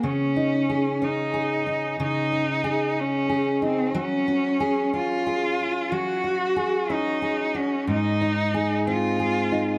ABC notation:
X:1
M:6/8
L:1/8
Q:3/8=61
K:Db
V:1 name="Cello"
D3 E3 | E3 D2 C | D3 F3 | G3 E2 D |
E3 F3 |]
V:2 name="Steel-string acoustic guitar"
D, E A D A E | D, E A2 A E | G, G A D A2 | G, G A D A G |
A,, E A C A E |]